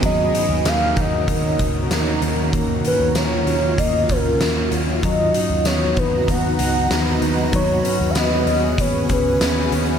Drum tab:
HH |xxxxxxxx|xxxxxxxx|xxxxxxxx|xxxxxxxx|
TB |--x---x-|--x---x-|--x---x-|--x---x-|
SD |--o---o-|--o---o-|--o---o-|--o---o-|
BD |o--ooo--|o---oo--|o--oo---|o---oo--|